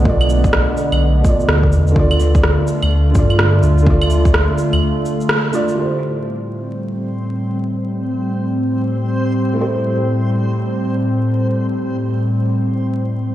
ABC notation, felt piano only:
X:1
M:4/4
L:1/8
Q:"Swing 16ths" 1/4=126
K:Am
V:1 name="Felt piano"
[B,,A,Fd]4- [B,,A,Fd] [B,,A,Fd]3 | [D,A,Fd]4- [D,A,Fd] [D,A,Fd]3 | [D,A,Fd]4- [D,A,Fd] z2 [D,A,Fd] | [A,EGc]8- |
[A,EGc]8 | [A,EGc]8- | [A,EGc]4 z4 |]